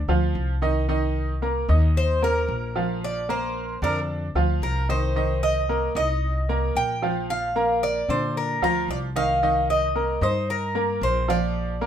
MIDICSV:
0, 0, Header, 1, 4, 480
1, 0, Start_track
1, 0, Key_signature, -3, "minor"
1, 0, Tempo, 533333
1, 797, Time_signature, 4, 2, 24, 8
1, 10678, End_track
2, 0, Start_track
2, 0, Title_t, "Cuban tres"
2, 0, Program_c, 0, 25
2, 1775, Note_on_c, 0, 72, 95
2, 2000, Note_off_c, 0, 72, 0
2, 2015, Note_on_c, 0, 70, 93
2, 2691, Note_off_c, 0, 70, 0
2, 2740, Note_on_c, 0, 74, 100
2, 2962, Note_off_c, 0, 74, 0
2, 2970, Note_on_c, 0, 72, 85
2, 3411, Note_off_c, 0, 72, 0
2, 3453, Note_on_c, 0, 70, 91
2, 3593, Note_off_c, 0, 70, 0
2, 4168, Note_on_c, 0, 70, 92
2, 4387, Note_off_c, 0, 70, 0
2, 4408, Note_on_c, 0, 72, 100
2, 4850, Note_off_c, 0, 72, 0
2, 4887, Note_on_c, 0, 75, 94
2, 5330, Note_off_c, 0, 75, 0
2, 5369, Note_on_c, 0, 75, 103
2, 6085, Note_off_c, 0, 75, 0
2, 6089, Note_on_c, 0, 79, 109
2, 6530, Note_off_c, 0, 79, 0
2, 6572, Note_on_c, 0, 77, 102
2, 7044, Note_off_c, 0, 77, 0
2, 7048, Note_on_c, 0, 74, 101
2, 7290, Note_off_c, 0, 74, 0
2, 7290, Note_on_c, 0, 72, 85
2, 7531, Note_off_c, 0, 72, 0
2, 7536, Note_on_c, 0, 70, 89
2, 7764, Note_off_c, 0, 70, 0
2, 7774, Note_on_c, 0, 70, 89
2, 7990, Note_off_c, 0, 70, 0
2, 8015, Note_on_c, 0, 74, 98
2, 8077, Note_off_c, 0, 74, 0
2, 8248, Note_on_c, 0, 77, 98
2, 8727, Note_off_c, 0, 77, 0
2, 8731, Note_on_c, 0, 75, 91
2, 9210, Note_on_c, 0, 72, 89
2, 9217, Note_off_c, 0, 75, 0
2, 9426, Note_off_c, 0, 72, 0
2, 9451, Note_on_c, 0, 70, 90
2, 9889, Note_off_c, 0, 70, 0
2, 9930, Note_on_c, 0, 72, 98
2, 10168, Note_off_c, 0, 72, 0
2, 10169, Note_on_c, 0, 74, 87
2, 10678, Note_off_c, 0, 74, 0
2, 10678, End_track
3, 0, Start_track
3, 0, Title_t, "Grand piano"
3, 0, Program_c, 1, 0
3, 77, Note_on_c, 1, 53, 84
3, 80, Note_on_c, 1, 65, 78
3, 82, Note_on_c, 1, 77, 72
3, 471, Note_off_c, 1, 53, 0
3, 473, Note_off_c, 1, 65, 0
3, 474, Note_off_c, 1, 77, 0
3, 556, Note_on_c, 1, 51, 84
3, 558, Note_on_c, 1, 63, 86
3, 561, Note_on_c, 1, 75, 84
3, 753, Note_off_c, 1, 51, 0
3, 754, Note_off_c, 1, 63, 0
3, 756, Note_off_c, 1, 75, 0
3, 796, Note_on_c, 1, 51, 84
3, 798, Note_on_c, 1, 63, 87
3, 801, Note_on_c, 1, 75, 76
3, 1190, Note_off_c, 1, 51, 0
3, 1191, Note_off_c, 1, 63, 0
3, 1193, Note_off_c, 1, 75, 0
3, 1278, Note_on_c, 1, 58, 74
3, 1281, Note_on_c, 1, 70, 70
3, 1284, Note_on_c, 1, 82, 71
3, 1475, Note_off_c, 1, 58, 0
3, 1476, Note_off_c, 1, 70, 0
3, 1478, Note_off_c, 1, 82, 0
3, 1519, Note_on_c, 1, 63, 72
3, 1523, Note_on_c, 1, 75, 77
3, 1525, Note_on_c, 1, 87, 78
3, 1912, Note_off_c, 1, 63, 0
3, 1914, Note_off_c, 1, 75, 0
3, 1916, Note_off_c, 1, 87, 0
3, 2000, Note_on_c, 1, 58, 75
3, 2003, Note_on_c, 1, 70, 76
3, 2006, Note_on_c, 1, 82, 77
3, 2393, Note_off_c, 1, 58, 0
3, 2395, Note_off_c, 1, 70, 0
3, 2396, Note_off_c, 1, 82, 0
3, 2480, Note_on_c, 1, 53, 77
3, 2481, Note_on_c, 1, 65, 72
3, 2484, Note_on_c, 1, 77, 71
3, 2873, Note_off_c, 1, 53, 0
3, 2874, Note_off_c, 1, 65, 0
3, 2875, Note_off_c, 1, 77, 0
3, 2959, Note_on_c, 1, 58, 79
3, 2962, Note_on_c, 1, 70, 87
3, 2964, Note_on_c, 1, 82, 83
3, 3353, Note_off_c, 1, 58, 0
3, 3354, Note_off_c, 1, 70, 0
3, 3356, Note_off_c, 1, 82, 0
3, 3439, Note_on_c, 1, 50, 82
3, 3442, Note_on_c, 1, 62, 90
3, 3444, Note_on_c, 1, 74, 90
3, 3832, Note_off_c, 1, 50, 0
3, 3834, Note_off_c, 1, 62, 0
3, 3836, Note_off_c, 1, 74, 0
3, 3919, Note_on_c, 1, 53, 69
3, 3921, Note_on_c, 1, 65, 83
3, 3924, Note_on_c, 1, 77, 76
3, 4312, Note_off_c, 1, 53, 0
3, 4314, Note_off_c, 1, 65, 0
3, 4316, Note_off_c, 1, 77, 0
3, 4399, Note_on_c, 1, 51, 78
3, 4401, Note_on_c, 1, 63, 76
3, 4405, Note_on_c, 1, 75, 85
3, 4596, Note_off_c, 1, 51, 0
3, 4597, Note_off_c, 1, 63, 0
3, 4599, Note_off_c, 1, 75, 0
3, 4641, Note_on_c, 1, 51, 82
3, 4644, Note_on_c, 1, 63, 77
3, 4647, Note_on_c, 1, 75, 81
3, 5034, Note_off_c, 1, 51, 0
3, 5036, Note_off_c, 1, 63, 0
3, 5037, Note_off_c, 1, 75, 0
3, 5122, Note_on_c, 1, 58, 73
3, 5124, Note_on_c, 1, 70, 72
3, 5127, Note_on_c, 1, 82, 69
3, 5317, Note_off_c, 1, 58, 0
3, 5319, Note_off_c, 1, 70, 0
3, 5320, Note_off_c, 1, 82, 0
3, 5362, Note_on_c, 1, 63, 74
3, 5364, Note_on_c, 1, 75, 77
3, 5367, Note_on_c, 1, 87, 77
3, 5754, Note_off_c, 1, 63, 0
3, 5756, Note_off_c, 1, 75, 0
3, 5757, Note_off_c, 1, 87, 0
3, 5841, Note_on_c, 1, 58, 81
3, 5844, Note_on_c, 1, 70, 76
3, 5847, Note_on_c, 1, 82, 79
3, 6234, Note_off_c, 1, 58, 0
3, 6235, Note_off_c, 1, 70, 0
3, 6237, Note_off_c, 1, 82, 0
3, 6321, Note_on_c, 1, 53, 73
3, 6322, Note_on_c, 1, 65, 78
3, 6326, Note_on_c, 1, 77, 71
3, 6713, Note_off_c, 1, 53, 0
3, 6714, Note_off_c, 1, 65, 0
3, 6717, Note_off_c, 1, 77, 0
3, 6800, Note_on_c, 1, 58, 78
3, 6803, Note_on_c, 1, 70, 82
3, 6806, Note_on_c, 1, 82, 82
3, 7193, Note_off_c, 1, 58, 0
3, 7194, Note_off_c, 1, 70, 0
3, 7196, Note_off_c, 1, 82, 0
3, 7280, Note_on_c, 1, 50, 84
3, 7282, Note_on_c, 1, 62, 81
3, 7285, Note_on_c, 1, 74, 92
3, 7672, Note_off_c, 1, 50, 0
3, 7674, Note_off_c, 1, 62, 0
3, 7676, Note_off_c, 1, 74, 0
3, 7759, Note_on_c, 1, 53, 74
3, 7763, Note_on_c, 1, 65, 83
3, 7765, Note_on_c, 1, 77, 79
3, 8152, Note_off_c, 1, 53, 0
3, 8154, Note_off_c, 1, 65, 0
3, 8155, Note_off_c, 1, 77, 0
3, 8240, Note_on_c, 1, 51, 84
3, 8243, Note_on_c, 1, 63, 81
3, 8245, Note_on_c, 1, 75, 83
3, 8436, Note_off_c, 1, 51, 0
3, 8438, Note_off_c, 1, 63, 0
3, 8439, Note_off_c, 1, 75, 0
3, 8481, Note_on_c, 1, 51, 82
3, 8485, Note_on_c, 1, 63, 86
3, 8487, Note_on_c, 1, 75, 78
3, 8873, Note_off_c, 1, 51, 0
3, 8875, Note_off_c, 1, 63, 0
3, 8876, Note_off_c, 1, 75, 0
3, 8958, Note_on_c, 1, 58, 66
3, 8960, Note_on_c, 1, 70, 69
3, 8964, Note_on_c, 1, 82, 75
3, 9154, Note_off_c, 1, 58, 0
3, 9155, Note_off_c, 1, 70, 0
3, 9157, Note_off_c, 1, 82, 0
3, 9195, Note_on_c, 1, 63, 73
3, 9199, Note_on_c, 1, 75, 82
3, 9201, Note_on_c, 1, 87, 84
3, 9588, Note_off_c, 1, 63, 0
3, 9591, Note_off_c, 1, 75, 0
3, 9592, Note_off_c, 1, 87, 0
3, 9674, Note_on_c, 1, 58, 85
3, 9676, Note_on_c, 1, 70, 77
3, 9678, Note_on_c, 1, 82, 79
3, 10067, Note_off_c, 1, 58, 0
3, 10068, Note_off_c, 1, 70, 0
3, 10070, Note_off_c, 1, 82, 0
3, 10155, Note_on_c, 1, 53, 82
3, 10157, Note_on_c, 1, 65, 73
3, 10161, Note_on_c, 1, 77, 73
3, 10547, Note_off_c, 1, 53, 0
3, 10548, Note_off_c, 1, 65, 0
3, 10550, Note_off_c, 1, 77, 0
3, 10631, Note_on_c, 1, 58, 87
3, 10634, Note_on_c, 1, 70, 90
3, 10637, Note_on_c, 1, 82, 75
3, 10678, Note_off_c, 1, 58, 0
3, 10678, Note_off_c, 1, 70, 0
3, 10678, Note_off_c, 1, 82, 0
3, 10678, End_track
4, 0, Start_track
4, 0, Title_t, "Upright bass"
4, 0, Program_c, 2, 32
4, 73, Note_on_c, 2, 38, 71
4, 298, Note_off_c, 2, 38, 0
4, 315, Note_on_c, 2, 36, 96
4, 1457, Note_off_c, 2, 36, 0
4, 1517, Note_on_c, 2, 39, 101
4, 2202, Note_off_c, 2, 39, 0
4, 2236, Note_on_c, 2, 34, 103
4, 3378, Note_off_c, 2, 34, 0
4, 3437, Note_on_c, 2, 41, 105
4, 3884, Note_off_c, 2, 41, 0
4, 3916, Note_on_c, 2, 38, 73
4, 4140, Note_off_c, 2, 38, 0
4, 4158, Note_on_c, 2, 36, 93
4, 5298, Note_off_c, 2, 36, 0
4, 5357, Note_on_c, 2, 36, 107
4, 6042, Note_off_c, 2, 36, 0
4, 6078, Note_on_c, 2, 34, 91
4, 7218, Note_off_c, 2, 34, 0
4, 7277, Note_on_c, 2, 46, 91
4, 7724, Note_off_c, 2, 46, 0
4, 7756, Note_on_c, 2, 38, 76
4, 7980, Note_off_c, 2, 38, 0
4, 7996, Note_on_c, 2, 36, 96
4, 9135, Note_off_c, 2, 36, 0
4, 9193, Note_on_c, 2, 43, 100
4, 9877, Note_off_c, 2, 43, 0
4, 9913, Note_on_c, 2, 34, 107
4, 10678, Note_off_c, 2, 34, 0
4, 10678, End_track
0, 0, End_of_file